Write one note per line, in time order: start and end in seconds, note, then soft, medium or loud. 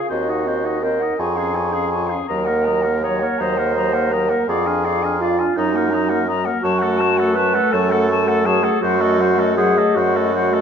0.00 0.11 F5 soft
0.09 1.07 D#2 medium
0.09 0.30 C4 soft
0.09 0.84 F#4 medium
0.09 0.31 C5 soft
0.09 0.32 D#5 soft
0.28 0.47 D#4 soft
0.28 0.49 D#5 soft
0.28 0.50 F#5 soft
0.45 0.66 C4 soft
0.45 0.67 C5 soft
0.45 0.66 D#5 soft
0.65 0.81 D#4 soft
0.65 0.83 D#5 soft
0.65 0.82 F#5 soft
0.82 1.02 C4 soft
0.82 1.21 A#4 medium
0.82 1.04 C5 soft
0.82 1.01 D#5 soft
1.00 1.18 D#4 soft
1.00 1.20 D#5 soft
1.00 1.17 F#5 soft
1.18 2.16 F2 medium
1.18 1.38 F4 soft
1.18 2.13 G#4 medium
1.18 1.40 C#5 soft
1.18 1.38 G#5 soft
1.36 1.57 C#4 soft
1.36 1.57 G#4 soft
1.36 1.56 F5 soft
1.55 1.76 F4 soft
1.55 1.75 C#5 soft
1.55 1.74 G#5 soft
1.73 1.93 C#4 soft
1.73 1.91 G#4 soft
1.73 1.89 F5 soft
1.89 2.11 C#5 soft
1.89 2.08 G#5 soft
1.94 2.14 F4 soft
2.07 2.27 G#4 soft
2.07 2.26 F5 soft
2.13 2.30 C#4 soft
2.26 3.28 D#2 medium
2.26 2.51 F#3 soft
2.26 3.05 A#4 medium
2.26 2.49 D#5 soft
2.26 2.46 A#5 soft
2.45 2.68 A#4 soft
2.45 2.66 F#5 soft
2.49 2.70 A#3 soft
2.65 2.89 F#3 soft
2.65 2.85 D#5 soft
2.65 2.83 A#5 soft
2.82 3.03 A#4 soft
2.82 3.01 F#5 soft
2.87 3.05 A#3 soft
3.02 3.42 C#5 medium
3.02 3.25 D#5 soft
3.02 3.21 A#5 soft
3.06 3.25 F#3 soft
3.20 3.43 A#4 soft
3.20 3.40 F#5 soft
3.24 3.42 A#3 soft
3.38 4.35 D#2 medium
3.38 3.61 F#3 soft
3.38 4.15 C5 medium
3.38 3.60 D#5 soft
3.38 3.59 A#5 soft
3.57 3.76 A#3 soft
3.57 3.75 A#4 soft
3.57 3.75 F#5 soft
3.76 3.96 F#3 soft
3.76 3.95 D#5 soft
3.76 3.95 A#5 soft
3.93 4.14 A#3 soft
3.93 4.14 A#4 soft
3.93 4.13 F#5 soft
4.11 4.31 F#3 soft
4.11 4.48 A#4 medium
4.11 4.32 D#5 medium
4.11 4.31 A#5 soft
4.29 4.48 A#3 soft
4.29 4.48 A#4 soft
4.29 4.47 F#5 soft
4.47 5.44 F2 medium
4.47 4.68 F4 medium
4.47 5.23 G#4 medium
4.47 4.68 D5 medium
4.47 4.68 F5 medium
4.67 4.87 D4 soft
4.67 4.86 F5 soft
4.67 4.87 G#5 soft
4.84 5.04 F4 soft
4.84 5.06 D5 soft
4.84 5.04 F5 medium
5.03 5.21 D4 medium
5.03 5.21 F5 soft
5.03 5.20 G#5 soft
5.21 5.58 F4 medium
5.21 5.41 F4 medium
5.21 5.41 D5 soft
5.21 5.40 F5 medium
5.39 5.56 D4 soft
5.39 5.57 F5 soft
5.39 5.56 G#5 soft
5.56 6.51 F#2 medium
5.56 5.76 F#3 medium
5.56 6.39 D#4 medium
5.56 5.78 D#5 medium
5.56 5.77 A#5 medium
5.74 5.93 A#3 soft
5.74 5.95 A#4 soft
5.74 5.92 F#5 soft
5.91 6.12 F#3 medium
5.91 6.12 D#5 soft
5.91 6.11 A#5 medium
6.09 6.28 A#3 soft
6.09 6.28 A#4 medium
6.09 6.27 F#5 medium
6.28 6.48 F#3 medium
6.28 6.48 D#5 medium
6.28 6.47 A#5 medium
6.45 6.64 A#3 medium
6.45 6.64 A#4 medium
6.45 6.62 F#5 medium
6.62 7.60 F#2 medium
6.62 6.85 F#3 medium
6.62 7.37 F#4 medium
6.62 6.83 C#5 medium
6.62 6.80 A5 medium
6.79 7.02 A4 medium
6.79 7.00 F#5 medium
6.83 7.03 A3 medium
6.98 7.21 F#3 medium
6.98 7.21 C#5 medium
6.98 7.19 A5 medium
7.18 7.37 A3 medium
7.18 7.36 A4 medium
7.18 7.36 F#5 medium
7.35 7.59 F#3 medium
7.35 7.73 B4 medium
7.35 7.56 C#5 medium
7.35 7.55 A5 medium
7.54 7.75 A3 medium
7.54 7.75 A4 medium
7.54 7.74 F#5 medium
7.72 8.70 F#2 medium
7.72 7.94 F#3 medium
7.72 8.47 A4 medium
7.72 7.93 C#5 medium
7.72 7.91 A5 medium
7.90 8.09 A3 medium
7.90 8.09 A4 medium
7.90 8.09 F#5 medium
8.10 8.29 F#3 medium
8.10 8.30 C#5 medium
8.10 8.30 A5 medium
8.27 8.47 A3 medium
8.27 8.47 A4 medium
8.27 8.47 F#5 medium
8.45 8.65 F#3 medium
8.45 8.81 G#4 medium
8.45 8.65 C#5 medium
8.45 8.66 A5 medium
8.63 8.81 A3 medium
8.63 8.82 A4 medium
8.63 8.82 F#5 medium
8.81 9.83 F#2 medium
8.81 9.01 F#3 medium
8.81 9.56 F#4 loud
8.81 9.02 C5 medium
8.81 9.03 F#5 medium
9.00 9.21 A3 medium
9.00 9.22 A4 medium
9.00 9.22 D#5 medium
9.19 9.40 F#3 medium
9.19 9.41 C5 medium
9.19 9.40 F#5 medium
9.39 9.57 A3 medium
9.39 9.57 A4 medium
9.39 9.56 D#5 medium
9.57 9.78 F#3 medium
9.57 9.97 G#4 medium
9.57 9.79 C5 medium
9.57 9.79 F#5 medium
9.77 9.98 A3 medium
9.77 9.99 A4 medium
9.77 10.00 D#5 medium
9.95 10.61 F#2 medium
9.95 10.17 F#3 medium
9.95 10.61 F#4 medium
9.95 10.17 C5 medium
9.95 10.18 F#5 medium
10.15 10.34 A3 medium
10.15 10.34 A4 medium
10.15 10.35 D#5 medium
10.34 10.54 F#3 medium
10.34 10.54 C5 medium
10.34 10.55 F#5 medium
10.53 10.61 A3 medium
10.53 10.61 A4 medium
10.53 10.61 D#5 medium